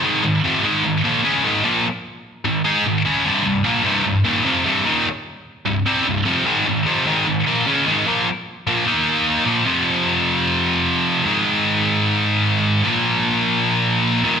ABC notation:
X:1
M:4/4
L:1/8
Q:1/4=150
K:Ab
V:1 name="Distorted electric guitar" clef=bass
[A,,E,A,] [A,,E,] [F,,C,F,] [A,,E,A,] [A,,E,] [B,,F,B,] [D,A,D] [A,,E,A,] | [B,,F,B,] z3 [A,,E,] [A,EA] [A,,E,] [D,A,D] | [C,,G,,C,] [C,,G,,] [B,,F,B,] [C,,G,,C,] [C,,G,,] [E,,B,,E,] [F,,C,F,] [C,,G,,C,] | [E,,B,,E,] z3 [C,,G,,] [C,G,C] [C,,G,,] [F,,C,F,] |
[A,,E,A,] [A,,E,] [F,,C,F,] [A,,E,A,] [A,,E,] [B,,F,B,] [D,A,D] [A,,E,A,] | [B,,F,B,] z2 [B,,F,B,] [E,B,E]3 [B,,F,B,] | [F,,C,F,]8 | [A,,E,A,]8 |
[B,,F,B,]6- [B,,F,B,] [E,,B,,E,] |]